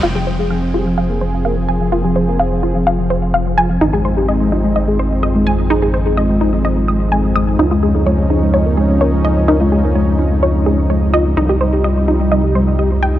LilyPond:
<<
  \new Staff \with { instrumentName = "Synth arpeggio sound" } { \time 4/4 \key f \minor \tempo 4 = 127 f'16 aes'16 c''16 r16 f''16 r16 f'16 r16 f''16 r16 c''16 r16 f''16 r16 aes''16 r16 | f'16 aes'16 c''16 r16 f''16 r16 f'16 r16 f''16 r16 c''16 r16 f''16 r16 aes''16 r16 | ees'16 aes'16 c''16 r16 ees''16 r16 ees'16 r16 ees''16 r16 c''16 r16 ees''16 r16 aes''16 r16 | ees'16 aes'16 c''16 r16 ees''16 r16 ees'16 r16 ees''16 r16 ees'''16 r16 aes''16 r16 ees'''16 r16 |
ees'16 f'16 aes'16 r16 des''16 r16 ees'16 r16 des''16 r16 aes'16 r16 des''16 r16 ees''16 r16 | ees'16 f'16 aes'16 r16 des''16 r16 ees'16 r16 des''16 r16 aes'16 r16 des''16 r16 ees''16 r16 | ees'16 g'16 c''16 r16 ees''16 r16 ees'16 r16 ees''16 r16 c''16 r16 ees''16 r16 g''16 r16 | }
  \new Staff \with { instrumentName = "Analog synth pad" } { \time 4/4 \key f \minor << { aes'1~ | aes'1 | ees'1~ | ees'1~ |
ees'1~ | ees'1~ | ees'1 | } \\ { <f c'>1~ | <f c'>1 | <aes c'>1~ | <aes c'>1 |
<f des'>1~ | <f des'>1 | <c g>1 | } >> }
  \new Staff \with { instrumentName = "Soft synth lead" } { \clef bass \time 4/4 \key f \minor f'16 f16 f16 aes'16 f16 f16 g'16 f16 f16 bes'16 f16 f16 bes'16 f16 f16 f16 | bes'16 f16 f16 bes'16 f16 f16 f'16 f16 f'16 f16 f16 r16 f16 f16 f'16 f16 | ees'16 aes16 aes16 g'16 aes16 aes16 f'16 aes16 aes16 aes'16 aes16 aes16 aes'16 aes16 aes16 aes16 | aes'16 aes16 aes16 aes'16 aes16 aes16 ees'16 aes16 c'16 aes16 aes16 r16 aes16 aes16 aes16 aes16 |
f'16 aes16 aes16 aes'16 aes16 aes16 aes'16 aes16 aes16 bes'16 aes16 aes16 bes'16 aes16 aes16 aes16 | bes'16 aes16 aes16 bes'16 aes16 aes16 f'16 aes16 f'16 aes16 aes16 r16 aes16 aes16 f'16 aes16 | ees'16 g16 g16 g'16 g16 g16 f'16 g16 g16 g'16 g16 g16 g'16 g16 g16 g16 | }
  \new Staff \with { instrumentName = "Synth drone" } { \clef bass \time 4/4 \key f \minor f,1~ | f,1~ | f,1~ | f,1~ |
f,1~ | f,1~ | f,1 | }
  \new Staff \with { instrumentName = "Analog synth bass" } { \clef bass \time 4/4 \key f \minor f,,1~ | f,,1 | aes,,1~ | aes,,1 |
des,1~ | des,1 | c,1 | }
>>